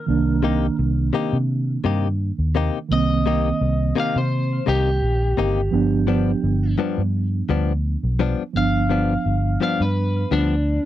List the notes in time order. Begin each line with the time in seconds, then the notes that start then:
Already playing: A#4
0.06 C2 D#3 A#3 D4
0.43 C3 A#3 D#4 G4
0.79 C2
1.13 C3 A#3 D#4 G4
1.33 C3
1.84 G2 C3 A#3 D#4 G4
2.39 D#2
2.55 C3 A#3 D#4 G4
2.89 C2 D#3 A#3
2.93 C4 D#5
3.26 C3 A#3 D#4 G4
3.61 C2
3.96 C3 A#3 D#4 G4
4.00 F5
4.16 C3 C5
4.66 C2 C3 A#3 D#4 G4
5.02 A#1
5.37 G1 C3 A#3 D#4 G4
5.71 G1 F3 B3 D4
6.07 G2 F3 B3 D4
6.44 G1
6.78 G2 F3 B3 D4
6.98 G2
7.49 D2 G2 F3 B3 D4
8.03 B1
8.19 G2 F3 B3 D4
8.53 G1 F3 B3 D4 F5
8.90 G2 F3 B3 D4
9.26 G1
9.61 G2 F3 B3 D4 F5
9.80 G2 B4
10.31 D2 G2 F3 B3 D4